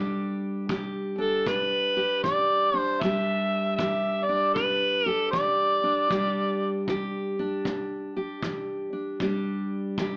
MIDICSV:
0, 0, Header, 1, 4, 480
1, 0, Start_track
1, 0, Key_signature, 1, "minor"
1, 0, Tempo, 774194
1, 1867, Time_signature, 4, 2, 24, 8
1, 6304, End_track
2, 0, Start_track
2, 0, Title_t, "Harmonica"
2, 0, Program_c, 0, 22
2, 734, Note_on_c, 0, 69, 80
2, 918, Note_on_c, 0, 71, 88
2, 927, Note_off_c, 0, 69, 0
2, 1384, Note_off_c, 0, 71, 0
2, 1387, Note_on_c, 0, 74, 92
2, 1722, Note_off_c, 0, 74, 0
2, 1722, Note_on_c, 0, 72, 92
2, 1867, Note_on_c, 0, 76, 106
2, 1876, Note_off_c, 0, 72, 0
2, 2328, Note_off_c, 0, 76, 0
2, 2332, Note_on_c, 0, 76, 94
2, 2632, Note_on_c, 0, 74, 92
2, 2641, Note_off_c, 0, 76, 0
2, 2810, Note_off_c, 0, 74, 0
2, 2813, Note_on_c, 0, 71, 92
2, 3154, Note_off_c, 0, 71, 0
2, 3154, Note_on_c, 0, 69, 92
2, 3275, Note_off_c, 0, 69, 0
2, 3294, Note_on_c, 0, 74, 88
2, 4235, Note_off_c, 0, 74, 0
2, 6304, End_track
3, 0, Start_track
3, 0, Title_t, "Steel-string acoustic guitar"
3, 0, Program_c, 1, 25
3, 0, Note_on_c, 1, 40, 61
3, 0, Note_on_c, 1, 55, 55
3, 0, Note_on_c, 1, 62, 50
3, 0, Note_on_c, 1, 67, 60
3, 392, Note_off_c, 1, 40, 0
3, 429, Note_on_c, 1, 52, 64
3, 432, Note_off_c, 1, 67, 0
3, 435, Note_on_c, 1, 67, 63
3, 731, Note_off_c, 1, 62, 0
3, 733, Note_on_c, 1, 62, 60
3, 873, Note_off_c, 1, 52, 0
3, 913, Note_on_c, 1, 47, 56
3, 1217, Note_off_c, 1, 67, 0
3, 1219, Note_on_c, 1, 67, 64
3, 1354, Note_off_c, 1, 47, 0
3, 1394, Note_on_c, 1, 52, 61
3, 1694, Note_off_c, 1, 62, 0
3, 1696, Note_on_c, 1, 62, 53
3, 1834, Note_off_c, 1, 52, 0
3, 1876, Note_on_c, 1, 40, 64
3, 1878, Note_off_c, 1, 55, 0
3, 1881, Note_on_c, 1, 55, 60
3, 1882, Note_off_c, 1, 62, 0
3, 1885, Note_on_c, 1, 62, 56
3, 1888, Note_off_c, 1, 67, 0
3, 1891, Note_on_c, 1, 67, 62
3, 2316, Note_off_c, 1, 40, 0
3, 2354, Note_on_c, 1, 52, 54
3, 2358, Note_off_c, 1, 67, 0
3, 2360, Note_on_c, 1, 67, 64
3, 2657, Note_off_c, 1, 62, 0
3, 2659, Note_on_c, 1, 62, 56
3, 2794, Note_off_c, 1, 52, 0
3, 2836, Note_on_c, 1, 47, 65
3, 3135, Note_off_c, 1, 67, 0
3, 3137, Note_on_c, 1, 67, 66
3, 3275, Note_off_c, 1, 47, 0
3, 3309, Note_on_c, 1, 52, 56
3, 3615, Note_off_c, 1, 62, 0
3, 3617, Note_on_c, 1, 62, 53
3, 3752, Note_off_c, 1, 52, 0
3, 3781, Note_on_c, 1, 40, 71
3, 3786, Note_off_c, 1, 55, 0
3, 3788, Note_off_c, 1, 62, 0
3, 3788, Note_on_c, 1, 55, 53
3, 3790, Note_on_c, 1, 62, 49
3, 3794, Note_off_c, 1, 67, 0
3, 3796, Note_on_c, 1, 67, 62
3, 4228, Note_off_c, 1, 40, 0
3, 4270, Note_on_c, 1, 52, 59
3, 4271, Note_off_c, 1, 67, 0
3, 4274, Note_on_c, 1, 67, 68
3, 4581, Note_off_c, 1, 62, 0
3, 4583, Note_on_c, 1, 62, 60
3, 4714, Note_off_c, 1, 52, 0
3, 4753, Note_on_c, 1, 47, 63
3, 5060, Note_off_c, 1, 67, 0
3, 5062, Note_on_c, 1, 67, 62
3, 5195, Note_off_c, 1, 47, 0
3, 5235, Note_on_c, 1, 52, 55
3, 5527, Note_off_c, 1, 62, 0
3, 5535, Note_on_c, 1, 62, 49
3, 5677, Note_off_c, 1, 52, 0
3, 5689, Note_off_c, 1, 62, 0
3, 5703, Note_on_c, 1, 40, 58
3, 5708, Note_off_c, 1, 55, 0
3, 5711, Note_on_c, 1, 55, 54
3, 5717, Note_off_c, 1, 67, 0
3, 5717, Note_on_c, 1, 62, 52
3, 5719, Note_on_c, 1, 67, 57
3, 6152, Note_off_c, 1, 40, 0
3, 6196, Note_on_c, 1, 52, 60
3, 6198, Note_off_c, 1, 67, 0
3, 6200, Note_on_c, 1, 67, 62
3, 6304, Note_off_c, 1, 52, 0
3, 6304, Note_off_c, 1, 55, 0
3, 6304, Note_off_c, 1, 62, 0
3, 6304, Note_off_c, 1, 67, 0
3, 6304, End_track
4, 0, Start_track
4, 0, Title_t, "Drums"
4, 429, Note_on_c, 9, 36, 69
4, 491, Note_off_c, 9, 36, 0
4, 908, Note_on_c, 9, 36, 63
4, 970, Note_off_c, 9, 36, 0
4, 1388, Note_on_c, 9, 36, 61
4, 1450, Note_off_c, 9, 36, 0
4, 1869, Note_on_c, 9, 36, 71
4, 1931, Note_off_c, 9, 36, 0
4, 2348, Note_on_c, 9, 36, 59
4, 2410, Note_off_c, 9, 36, 0
4, 2827, Note_on_c, 9, 36, 57
4, 2889, Note_off_c, 9, 36, 0
4, 3306, Note_on_c, 9, 36, 67
4, 3368, Note_off_c, 9, 36, 0
4, 3786, Note_on_c, 9, 36, 71
4, 3848, Note_off_c, 9, 36, 0
4, 4264, Note_on_c, 9, 36, 59
4, 4326, Note_off_c, 9, 36, 0
4, 4744, Note_on_c, 9, 36, 64
4, 4806, Note_off_c, 9, 36, 0
4, 5224, Note_on_c, 9, 36, 70
4, 5286, Note_off_c, 9, 36, 0
4, 5705, Note_on_c, 9, 36, 63
4, 5767, Note_off_c, 9, 36, 0
4, 6187, Note_on_c, 9, 36, 64
4, 6249, Note_off_c, 9, 36, 0
4, 6304, End_track
0, 0, End_of_file